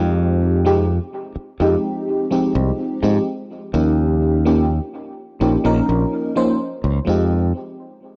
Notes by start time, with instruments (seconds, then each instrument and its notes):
Already playing: fingered electric bass F2, fm electric piano F3 G#3 C4 D#4 G4
0.65 fm electric piano F3 G#3 C4 D#4 G4
1.36 muted fingered electric bass stroke
1.60 fingered electric bass F2, fm electric piano F3 G#3 C4 D#4 G4
2.30 fm electric piano F3 G#3 C4 D#4 G4
2.55 fingered electric bass C2
3.02 fingered electric bass G#2, fm electric piano F3 G#3 C4 D#4 G4
3.73 fingered electric bass D#2, fm electric piano F3 A#3 C#4 D#4 G4
4.45 fm electric piano F3 A#3 C#4 D#4 G4
5.40 fingered electric bass A#1, fm electric piano F3 A#3 C#4 D#4 G4
5.64 fingered electric bass A#1, fm electric piano F3 A#3 C#4 D#4 A#4
5.89 fingered electric bass A#1
6.35 fm electric piano F3 A#3 C#4 D#4 C5
6.84 fingered electric bass C#2
7.05 fingered electric bass F2, fm electric piano F3 G#3 C4 D#4
7.09 fm electric piano G4